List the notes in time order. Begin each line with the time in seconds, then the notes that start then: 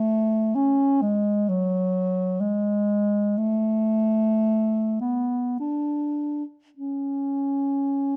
Already playing: A3
0.55 C#4
1.02 G#3
1.49 F#3
2.40 G#3
3.37 A3
5.01 B3
5.60 D4
6.77 C#4